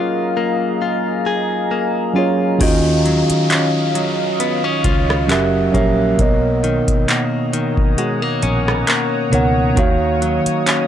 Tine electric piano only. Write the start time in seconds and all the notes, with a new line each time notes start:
Already playing: F#3 C#4 F4 G#4 A#4
2.14 F#3 C#4 F4 G#4
2.18 C#5
2.58 D#3 C#4 F4 F#4
2.63 D#5
5.27 F#3 C#4 G4 A#4
5.32 E5
5.72 F#3 C#4 G4 A#4
5.77 E5
6.17 B2 B3 A#4 C#5
6.21 D#5
9.30 B2 B3 A#4 C#5
9.35 F#5
9.75 D#3 A#3 F#4 C#5
9.79 F5